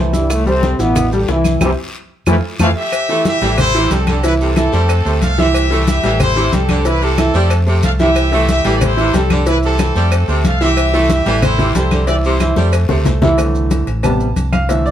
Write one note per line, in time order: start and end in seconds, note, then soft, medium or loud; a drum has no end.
0.00 0.73 C2 loud
0.00 0.12 E3 medium
0.00 0.10 A3 medium
0.00 0.12 E4 medium
0.00 0.10 A4 medium
0.00 0.11 C5 medium
0.13 0.31 G2 medium
0.13 0.40 E3 medium
0.13 0.30 G3 medium
0.13 0.40 E4 medium
0.13 0.40 E5 medium
0.13 high bongo soft
0.13 high conga medium
0.13 short guiro medium
0.13 maracas medium
0.30 0.47 A2 medium
0.30 0.47 A3 loud
0.30 high bongo medium
0.30 high conga soft
0.30 long guiro medium
0.30 claves medium
0.30 maracas medium
0.46 0.78 C3 medium
0.46 0.73 G3 medium
0.46 0.78 C4 loud
0.46 0.73 G4 medium
0.46 0.74 A4 medium
0.46 high conga soft
0.46 maracas soft
0.63 high bongo medium
0.63 high conga medium
0.63 short guiro medium
0.63 maracas soft
0.79 1.25 A1 medium
0.79 1.13 B2 medium
0.79 1.06 E3 medium
0.79 1.12 B3 loud
0.79 1.06 E4 medium
0.79 1.06 E5 medium
0.79 high conga soft
0.79 short guiro medium
0.79 maracas medium
0.95 high bongo medium
0.95 high conga soft
0.95 low conga medium
0.95 long guiro medium
0.95 claves medium
0.95 maracas medium
1.12 1.28 G2 medium
1.12 1.26 G3 medium
1.12 1.28 G3 medium
1.12 1.26 G4 medium
1.12 1.26 A4 medium
1.12 high conga soft
1.12 maracas soft
1.28 1.59 C2 medium
1.28 1.56 E3 medium
1.28 1.60 E3 medium
1.28 1.56 E4 medium
1.28 1.60 E4 medium
1.28 1.56 E5 medium
1.28 high bongo medium
1.28 low bongo medium
1.28 high conga soft
1.28 short guiro medium
1.28 maracas soft
1.44 high conga medium
1.44 short guiro medium
1.44 claves medium
1.44 maracas medium
1.61 1.73 C2 medium
1.61 1.70 C3 loud
1.61 1.70 E3 loud
1.61 1.70 G3 medium
1.61 1.72 C4 loud
1.61 1.72 E4 medium
1.61 1.72 G4 medium
1.61 low bongo medium
1.61 high conga loud
1.61 long guiro loud
1.61 claves loud
1.61 maracas medium
2.27 2.39 F2 medium
2.27 2.35 E3 loud
2.27 2.35 F3 medium
2.27 2.35 A3 loud
2.27 2.38 E4 loud
2.27 2.38 F4 loud
2.27 2.38 A4 loud
2.27 low bongo loud
2.27 high conga loud
2.27 long guiro medium
2.27 claves medium
2.27 maracas loud
2.59 2.72 F2 loud
2.59 2.68 E3 loud
2.59 2.68 F3 medium
2.59 2.68 A3 loud
2.59 2.70 E4 medium
2.59 2.70 F4 medium
2.59 2.70 A4 medium
2.59 2.68 A4 medium
2.59 2.68 F5 loud
2.59 low bongo medium
2.59 high conga medium
2.59 long guiro loud
2.59 claves medium
2.59 maracas medium
2.77 3.22 G4 medium
2.77 3.22 E5 loud
2.92 cowbell loud
2.92 high conga soft
2.92 long guiro medium
2.92 claves medium
2.92 maracas medium
3.09 3.36 E3 medium
3.09 3.27 A3 medium
3.09 3.36 E4 medium
3.09 3.36 E5 medium
3.09 high conga soft
3.09 maracas soft
3.25 3.57 G4 medium
3.25 3.57 E5 loud
3.25 cowbell medium
3.25 high conga medium
3.25 short guiro medium
3.25 maracas medium
3.41 3.87 A1 loud
3.41 3.59 E3 medium
3.41 3.69 G3 medium
3.41 3.69 G4 medium
3.41 3.69 A4 medium
3.41 cowbell medium
3.41 high conga soft
3.41 short guiro medium
3.41 maracas soft
3.58 3.89 E4 loud
3.58 3.89 C5 loud
3.58 cowbell loud
3.58 high conga soft
3.58 low conga medium
3.58 long guiro medium
3.58 claves medium
3.58 maracas medium
3.74 3.92 C3 medium
3.74 3.88 E3 medium
3.74 3.88 E4 medium
3.74 3.88 E5 medium
3.74 high conga soft
3.74 maracas soft
3.91 4.67 C2 medium
3.91 4.18 G3 medium
3.91 4.24 C4 medium
3.91 4.18 G4 medium
3.91 4.18 A4 medium
3.91 4.24 A4 loud
3.91 cowbell medium
3.91 high conga medium
3.91 short guiro medium
3.91 maracas medium
4.07 4.25 D3 medium
4.07 cowbell medium
4.07 high conga medium
4.07 short guiro medium
4.07 claves medium
4.07 maracas soft
4.23 4.51 E3 medium
4.23 4.51 E4 medium
4.23 4.33 E4 medium
4.23 4.32 B4 loud
4.23 4.51 E5 medium
4.23 cowbell loud
4.23 long guiro medium
4.23 maracas medium
4.40 4.58 C3 medium
4.40 5.19 C4 medium
4.40 5.18 A4 medium
4.40 high conga soft
4.40 maracas soft
4.56 4.70 E3 medium
4.56 4.70 E4 medium
4.56 4.70 E5 medium
4.56 cowbell medium
4.56 high conga medium
4.56 short guiro medium
4.56 claves medium
4.56 maracas medium
4.72 5.03 F2 loud
4.72 4.90 G3 medium
4.72 4.99 A3 medium
4.72 4.99 A4 medium
4.72 5.00 C5 medium
4.72 short guiro medium
4.72 maracas soft
4.89 cowbell loud
4.89 high conga soft
4.89 long guiro medium
4.89 claves medium
4.89 maracas medium
5.05 5.21 D2 medium
5.05 5.23 C3 medium
5.05 5.32 A3 medium
5.05 5.32 A4 medium
5.05 5.32 C5 medium
5.05 high conga soft
5.05 maracas soft
5.22 5.98 C2 medium
5.22 5.39 A4 medium
5.22 5.38 F5 loud
5.22 cowbell medium
5.22 high conga medium
5.22 short guiro medium
5.22 maracas medium
5.38 5.47 C3 medium
5.38 5.65 E3 medium
5.38 5.65 E4 medium
5.38 5.87 G4 medium
5.38 5.65 E5 medium
5.38 5.87 E5 loud
5.38 high conga medium
5.38 short guiro medium
5.38 maracas soft
5.54 cowbell loud
5.54 high conga soft
5.54 long guiro medium
5.54 claves medium
5.54 maracas medium
5.70 5.97 E3 medium
5.70 5.88 A3 medium
5.70 5.98 E4 loud
5.70 5.98 E5 medium
5.70 high conga soft
5.70 maracas soft
5.87 6.18 G4 medium
5.87 6.18 E5 loud
5.87 cowbell medium
5.87 high conga loud
5.87 short guiro medium
5.87 maracas medium
6.03 6.49 A1 loud
6.03 6.21 E3 medium
6.03 6.30 G3 medium
6.03 6.30 G4 medium
6.03 6.31 A4 medium
6.03 cowbell medium
6.03 high conga soft
6.03 short guiro medium
6.03 maracas soft
6.20 6.51 E4 medium
6.20 6.51 C5 loud
6.20 cowbell loud
6.20 high conga soft
6.20 low conga medium
6.20 long guiro medium
6.20 claves medium
6.20 maracas medium
6.36 6.54 C3 medium
6.36 6.50 E3 medium
6.36 6.50 E4 medium
6.36 6.50 E5 medium
6.36 high conga soft
6.36 maracas soft
6.53 7.29 C2 loud
6.53 6.79 G3 medium
6.53 6.84 C4 medium
6.53 6.80 G4 medium
6.53 6.80 A4 medium
6.53 6.83 A4 medium
6.53 cowbell medium
6.53 high conga medium
6.53 short guiro medium
6.53 maracas medium
6.69 6.86 D3 medium
6.69 cowbell medium
6.69 high conga medium
6.69 short guiro medium
6.69 claves medium
6.69 maracas soft
6.85 7.12 E3 medium
6.85 7.12 E4 medium
6.85 7.02 E4 medium
6.85 7.02 B4 loud
6.85 7.12 E5 medium
6.85 cowbell loud
6.85 long guiro medium
6.85 maracas medium
7.02 7.19 C3 medium
7.02 7.57 C4 medium
7.02 7.57 A4 loud
7.02 high conga soft
7.02 maracas soft
7.18 7.31 E3 medium
7.18 7.31 E4 medium
7.18 7.32 E5 medium
7.18 cowbell medium
7.18 high conga loud
7.18 short guiro medium
7.18 claves medium
7.18 maracas medium
7.34 7.80 F2 loud
7.34 7.52 G3 medium
7.34 7.61 A3 medium
7.34 7.61 A4 medium
7.34 7.61 C5 medium
7.34 short guiro medium
7.34 maracas soft
7.50 cowbell loud
7.50 high conga soft
7.50 long guiro medium
7.50 claves medium
7.50 maracas medium
7.66 7.84 C3 medium
7.66 7.93 A3 medium
7.66 7.94 A4 medium
7.66 7.94 C5 medium
7.66 high conga soft
7.66 maracas soft
7.83 8.59 C2 loud
7.83 7.92 A4 medium
7.83 7.91 F5 medium
7.83 cowbell medium
7.83 high conga medium
7.83 short guiro medium
7.83 maracas medium
7.99 8.08 C3 medium
7.99 8.26 E3 medium
7.99 8.27 E4 medium
7.99 8.46 G4 medium
7.99 8.45 E5 loud
7.99 8.27 E5 medium
7.99 high conga medium
7.99 short guiro medium
7.99 maracas soft
8.16 cowbell loud
8.16 high conga soft
8.16 long guiro medium
8.16 claves medium
8.16 maracas medium
8.32 8.59 E3 medium
8.32 8.50 A3 medium
8.32 8.59 E4 medium
8.32 8.59 E5 medium
8.32 high conga soft
8.32 maracas soft
8.49 8.73 G4 medium
8.49 8.73 E5 loud
8.49 cowbell medium
8.49 high conga medium
8.49 short guiro medium
8.49 maracas medium
8.65 9.10 A1 loud
8.65 8.82 E3 medium
8.65 8.91 G3 medium
8.65 8.92 G4 medium
8.65 8.92 A4 medium
8.65 cowbell medium
8.65 high conga soft
8.65 short guiro medium
8.65 maracas soft
8.76 8.82 D5 medium
8.81 9.15 E4 medium
8.81 9.14 C5 loud
8.81 cowbell loud
8.81 high conga soft
8.81 low conga medium
8.81 long guiro medium
8.81 claves medium
8.81 maracas medium
8.97 9.15 C3 medium
8.97 9.11 E3 medium
8.97 9.11 E4 medium
8.97 9.11 E5 medium
8.97 high conga soft
8.97 maracas soft
9.13 9.90 C2 loud
9.13 9.40 G3 medium
9.13 9.47 C4 medium
9.13 9.40 G4 medium
9.13 9.41 A4 medium
9.13 9.47 A4 medium
9.13 cowbell medium
9.13 high conga medium
9.13 short guiro medium
9.13 maracas medium
9.30 9.47 D3 medium
9.30 cowbell medium
9.30 high conga medium
9.30 short guiro medium
9.30 claves medium
9.30 maracas soft
9.46 9.73 E3 medium
9.46 9.73 E4 medium
9.46 9.55 E4 medium
9.46 9.55 B4 loud
9.46 9.74 E5 medium
9.46 cowbell loud
9.46 long guiro medium
9.46 maracas medium
9.63 9.80 C3 medium
9.63 10.41 C4 medium
9.63 10.41 A4 medium
9.63 high conga soft
9.63 maracas soft
9.79 9.92 E3 medium
9.79 9.93 E4 medium
9.79 9.93 E5 medium
9.79 cowbell medium
9.79 high conga loud
9.79 short guiro medium
9.79 claves medium
9.79 maracas medium
9.95 10.26 F2 loud
9.95 10.13 G3 medium
9.95 10.22 A3 medium
9.95 10.22 A4 medium
9.95 10.23 C5 medium
9.95 short guiro medium
9.95 maracas soft
10.12 cowbell loud
10.12 high conga soft
10.12 long guiro medium
10.12 claves medium
10.12 maracas medium
10.28 10.43 D2 medium
10.28 10.46 C3 medium
10.28 10.55 A3 medium
10.28 10.55 A4 medium
10.28 10.55 C5 medium
10.28 high conga soft
10.28 maracas soft
10.44 11.20 C2 loud
10.44 10.62 A4 medium
10.44 10.61 F5 medium
10.44 cowbell medium
10.44 high conga medium
10.44 short guiro medium
10.44 maracas medium
10.61 10.70 C3 medium
10.61 10.88 E3 medium
10.61 10.88 E4 medium
10.61 11.07 G4 medium
10.61 10.88 E5 loud
10.61 11.07 E5 loud
10.61 short guiro medium
10.61 maracas soft
10.77 cowbell loud
10.77 high conga soft
10.77 long guiro medium
10.77 claves medium
10.77 maracas medium
10.93 11.20 E3 loud
10.93 11.11 A3 medium
10.93 11.20 E4 loud
10.93 11.21 E5 medium
10.93 high conga soft
10.93 maracas soft
11.10 11.41 G4 medium
11.10 11.41 E5 loud
11.10 cowbell medium
11.10 high conga loud
11.10 short guiro medium
11.10 maracas medium
11.26 11.72 A1 loud
11.26 11.43 E3 medium
11.26 11.53 G3 medium
11.26 11.53 G4 medium
11.26 11.53 A4 medium
11.26 cowbell medium
11.26 high conga soft
11.26 short guiro medium
11.26 maracas soft
11.42 11.74 E4 medium
11.42 11.73 C5 loud
11.42 cowbell loud
11.42 high conga soft
11.42 low conga medium
11.42 long guiro medium
11.42 claves medium
11.42 maracas medium
11.58 11.77 C3 medium
11.58 11.72 E3 medium
11.58 11.72 E4 medium
11.58 11.72 E5 medium
11.58 high conga soft
11.58 low conga medium
11.58 maracas soft
11.75 12.51 C2 loud
11.75 12.02 G3 medium
11.75 12.06 E4 medium
11.75 12.02 G4 medium
11.75 12.02 A4 medium
11.75 12.06 C5 medium
11.75 cowbell medium
11.75 high conga medium
11.75 short guiro medium
11.75 maracas medium
11.91 12.09 D3 medium
11.91 cowbell medium
11.91 high conga medium
11.91 short guiro medium
11.91 claves medium
11.91 maracas soft
12.07 12.34 E3 medium
12.07 12.34 E4 medium
12.07 12.16 G4 medium
12.07 12.15 D5 loud
12.07 12.35 E5 medium
12.07 cowbell loud
12.07 high conga soft
12.07 long guiro medium
12.07 maracas medium
12.24 12.41 C3 medium
12.24 12.55 E4 medium
12.24 12.55 C5 medium
12.24 high conga soft
12.24 maracas soft
12.40 12.54 E3 medium
12.40 12.54 E4 medium
12.40 12.54 E5 medium
12.40 cowbell medium
12.40 high conga medium
12.40 short guiro medium
12.40 claves medium
12.40 maracas medium
12.56 12.87 F2 loud
12.56 12.74 G3 medium
12.56 12.83 A3 medium
12.56 12.83 A4 medium
12.56 12.84 C5 medium
12.56 high conga medium
12.56 short guiro medium
12.56 maracas soft
12.73 cowbell loud
12.73 long guiro medium
12.73 claves medium
12.73 maracas medium
12.89 13.05 D2 medium
12.89 13.06 C3 medium
12.89 13.16 A3 medium
12.89 13.16 A4 medium
12.89 13.16 C5 medium
12.89 high bongo loud
12.89 low conga medium
12.89 maracas soft
13.05 13.82 C2 medium
13.05 cowbell medium
13.05 low bongo loud
13.05 low conga medium
13.05 short guiro medium
13.05 maracas medium
13.22 13.31 C3 medium
13.22 13.35 E3 medium
13.22 13.35 E4 medium
13.22 13.35 E5 medium
13.22 low bongo medium
13.22 low conga loud
13.22 short guiro medium
13.22 maracas soft
13.38 13.84 D3 medium
13.38 13.85 E3 soft
13.38 13.85 A3 medium
13.38 cowbell loud
13.38 claves medium
13.38 maracas medium
13.55 high conga soft
13.55 maracas soft
13.71 cowbell medium
13.71 high conga medium
13.71 maracas medium
13.87 14.33 A1 loud
13.87 cowbell medium
13.87 high conga soft
13.87 maracas soft
14.03 14.25 C3 medium
14.03 14.26 G3 soft
14.03 14.26 B3 medium
14.03 14.49 A5 medium
14.03 cowbell loud
14.03 high conga soft
14.03 low conga medium
14.03 claves medium
14.03 maracas medium
14.20 maracas soft
14.36 14.91 C2 loud
14.36 cowbell medium
14.36 high conga medium
14.36 maracas medium
14.52 14.68 F5 medium
14.52 cowbell medium
14.52 high conga medium
14.52 claves medium
14.52 maracas soft
14.69 14.91 D3 medium
14.69 14.91 E3 soft
14.69 14.91 A3 medium
14.69 14.85 E5 medium
14.69 cowbell loud
14.69 high conga soft
14.69 maracas medium
14.85 14.91 D5 medium
14.85 high conga soft
14.85 maracas soft